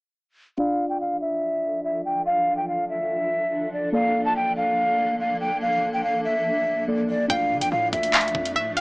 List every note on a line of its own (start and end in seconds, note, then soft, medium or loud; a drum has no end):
0.58 7.26 F3 medium
0.58 3.90 D4 medium
0.58 7.26 D4 medium
0.58 3.91 F4 medium
0.58 3.90 F4 medium
0.58 7.26 A4 medium
0.58 3.91 D5 medium
0.58 0.88 F5 loud
0.89 0.98 G5 medium
1.01 1.17 F5 medium
1.21 1.80 E5 medium
1.84 2.01 E5 medium
2.05 2.22 G5 medium
2.26 2.56 F5 loud
2.57 2.66 G5 medium
2.68 2.85 F5 medium
2.90 3.69 E5 medium
3.73 3.90 D5 medium
3.92 6.83 A#3 medium
3.92 7.26 A#3 medium
3.92 6.83 A4 medium
3.92 6.84 D5 medium
3.92 4.24 F5 loud
4.25 4.34 A5 medium
4.36 4.53 G5 medium
4.57 5.16 F5 medium
5.20 5.37 F5 medium
5.41 5.58 G5 medium
5.62 5.91 F5 loud
5.93 6.02 G5 medium
6.04 6.21 F5 medium
6.25 6.84 E5 medium
6.88 7.30 A#3 medium
6.88 7.30 A4 medium
6.88 7.29 D5 medium
7.09 7.26 D5 medium
7.28 7.52 D2 loud
7.28 8.81 F3 medium
7.28 8.81 A3 medium
7.28 8.81 D4 medium
7.28 8.81 F4 medium
7.28 8.81 D5 medium
7.28 7.59 F5 loud
7.28 7.69 G5 loud
7.28 kick loud
7.28 closed hi-hat medium
7.51 7.63 D3 loud
7.61 7.71 D2 loud
7.61 7.69 G5 medium
7.61 closed hi-hat medium
7.72 7.92 A2 loud
7.72 7.89 F5 medium
7.92 8.33 D2 loud
7.92 8.52 E5 medium
7.92 kick medium
7.92 closed hi-hat medium
8.03 closed hi-hat medium
8.14 8.53 F5 medium
8.14 clap loud
8.14 closed hi-hat medium
8.21 closed hi-hat medium
8.28 closed hi-hat soft
8.35 8.57 F2 loud
8.35 kick medium
8.45 closed hi-hat medium
8.56 8.73 A2 loud
8.56 8.72 E5 medium
8.56 8.76 E5 medium
8.71 8.81 F2 loud
8.77 8.81 F5 medium
8.77 8.81 G5 medium
8.77 closed hi-hat medium